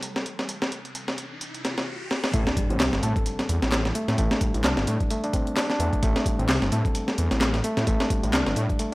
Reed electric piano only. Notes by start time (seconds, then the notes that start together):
2.34 A3
2.47 D4
2.57 G3
2.70 C4
3.03 A4
3.95 A3
4.19 A3
4.32 D4
4.41 G3
4.65 D4
5.11 A3
5.24 D4
5.34 C4
5.57 D4
5.70 D4
5.80 A3
6.03 A3
6.16 D4
6.26 G3
6.39 C4
6.72 A4
7.64 A3
7.88 A3
8.00 D4
8.10 G3
8.34 D4
8.80 A3